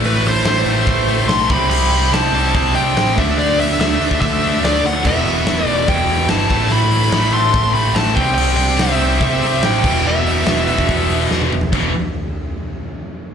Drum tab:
CC |----------------|x---------------|----------------|x---------------|
HH |o-o-o-o-o-o-o-o-|--o-o-o-o-o-o-o-|o-o-o-o-o-o-o-o-|--o-o-o-o-o-o-o-|
SD |----o-------oo--|----o-------oo--|----o-------o---|----o-------o---|
T1 |----------------|----------------|----------------|----------------|
T2 |----------------|----------------|----------------|----------------|
FT |----------------|----------------|----------------|----------------|
BD |--------o-----o-|--------o-----o-|-------oo-------|o-------o-----o-|

CC |----------------|x-------------x-|----------------|x---------------|
HH |o-o-o-o-o-o-o-o-|--o-o-o-o-o-o---|--o-o-o-o-o-----|----------------|
SD |----o-------o---|----o-------o---|----o-------o---|----------------|
T1 |----------------|----------------|-------------o--|----------------|
T2 |----------------|----------------|--------------o-|----------------|
FT |----------------|----------------|---------------o|----------------|
BD |--------o-----o-|--------o-----o-|-------oo-------|o---------------|